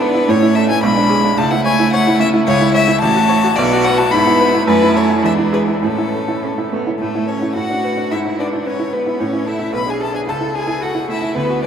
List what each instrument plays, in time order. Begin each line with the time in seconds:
Already playing: grand piano G#2 E4 B4, cello B3, violin D4
0.02 grand piano B3, violin B4
0.15 grand piano E4
0.27 grand piano A2, cello A3, violin C#4 C#5
0.43 grand piano E4
0.55 grand piano A4, violin E5
0.69 grand piano E4, violin G#5
0.83 grand piano B1, cello G#3, violin D4 B5
0.98 grand piano D4
1.10 grand piano G#4
1.24 grand piano D4
1.36 grand piano C#2, cello A3, violin E4 A5
1.51 grand piano E4, violin F#5
1.65 grand piano C#5, violin G#5
1.80 grand piano E4
1.93 grand piano C#5, violin F#5
2.07 grand piano E4
2.20 grand piano C#4, violin E5
2.34 grand piano E4
2.47 grand piano C#2, cello G#3, violin E4 C#5
2.61 grand piano E4
2.74 grand piano C#5, violin E5
2.88 grand piano E4
3.01 grand piano A1, cello A3, violin F#4 A5
3.16 grand piano F#4
3.29 grand piano C#5
3.44 grand piano F#4
3.56 grand piano B1, cello B3, violin F#4 D5
3.73 grand piano F#4
3.84 grand piano B4, violin F#5
3.98 grand piano F#4, violin A5
4.12 grand piano G#2, cello B3, violin E4 B5
4.27 grand piano E4
4.41 grand piano B4
4.55 grand piano E4
4.65 grand piano F#2, cello A3, violin E4 B4
4.82 grand piano E4
4.96 grand piano A4, violin C#5
5.10 grand piano E4
5.23 grand piano E2, cello G#3, violin D4 E5
5.38 grand piano E4
5.53 grand piano G#4, violin B4
5.68 grand piano E4
5.81 grand piano A2, cello A3, violin C#4 A4
5.98 grand piano E4
6.14 grand piano A4
6.28 grand piano E4
6.43 cello C#4, grand piano A4
6.58 grand piano E4
6.70 grand piano A3, cello B3
6.87 grand piano E4
6.99 grand piano A2, violin A3 A4, cello A3
7.15 grand piano E4
7.26 violin C#4 C#5, cello C#4, grand piano A4
7.42 grand piano E4
7.54 grand piano A2, violin F#4 F#5, cello F#4
7.70 grand piano D4
7.84 grand piano B4
7.97 grand piano D4
8.11 grand piano G#2, cello E4, violin E4 E5
8.25 grand piano E4
8.38 cello D4, violin D4 D5, grand piano B4
8.53 grand piano E4
8.66 cello C#4, violin C#4 C#5, grand piano B4
8.79 grand piano E4
8.92 cello B3, violin B3 B4, grand piano B3
9.06 grand piano E4
9.20 grand piano A2, violin C#4 C#5, cello C#4
9.33 grand piano E4
9.46 cello E4, violin E4 E5, grand piano A4
9.59 grand piano E4
9.73 grand piano B1, cello B4, violin B4 B5
9.87 grand piano D4, cello G#4, violin G#4 G#5
10.00 grand piano G#4, cello A4, violin A4 A5
10.14 grand piano D4, cello G#4, violin G#4 G#5
10.27 grand piano C#2, violin A4 A5, cello A4
10.40 grand piano E4
10.54 cello G#4, violin G#4 G#5, grand piano A4
10.67 grand piano E4
10.81 cello F#4, violin F#4 F#5, grand piano A4
10.95 grand piano E4
11.08 grand piano A3, cello E4, violin E4 E5
11.22 grand piano E4
11.36 grand piano D2, cello B3, violin B3 B4
11.50 grand piano F#4
11.62 cello D4, grand piano B4, violin D5